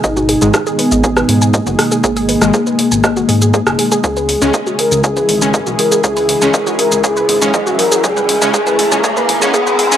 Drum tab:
HH |--o---o---o---o-|-oo---o---o---o-|--o---o---o---o-|-oo---o---o---o-|
SH |xx-xxx-xxx-xxx-x|xx-xxx-xxx-xxx-x|xx-xxx-xxx-xxx-x|xx-xxx-xxx-xxx-x|
SD |----r----r----r-|---r----r----r--|----------------|----------------|
T2 |oo--o--oo-o-oo--|o--oo-o-oo--o--o|o-ooo-o-ooo-o-oo|o-o-ooo-o-ooo-o-|
BD |o---o---o---o---|o---o---o---o---|o---o---o---o---|o---o---o---o---|

HH |--o---o---o---o-|
SH |xx-xxx-xxx-xxx-x|
SD |----------------|
T2 |oooooooooooooooo|
BD |o---o---o---o---|